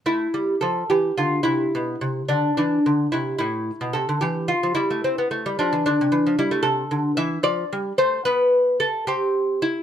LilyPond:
<<
  \new Staff \with { instrumentName = "Lute" } { \time 6/8 \key a \minor \tempo 4. = 73 e'4 a'8 g'8 f'8 e'8~ | e'4 d'8 d'4 e'8 | e'4 a'8 g'8 f'8 e'8~ | e'4 d'8 d'4 e'8 |
\key d \dorian a'4 e''8 d''4 c''8 | b'4 a'8 g'4 e'8 | }
  \new Staff \with { instrumentName = "Lute" } { \clef bass \time 6/8 \key a \minor a8 g8 f8 e8 d8 c8 | b,8 c8 d8 e8 d8 c8 | a,8. b,16 c16 d16 e8. f16 g16 a16 | c'16 b16 a16 g16 f16 e16 d16 c16 e16 f16 g16 a16 |
\key d \dorian c8 d8 e8 f8 g8 a8 | b4. c'4. | }
>>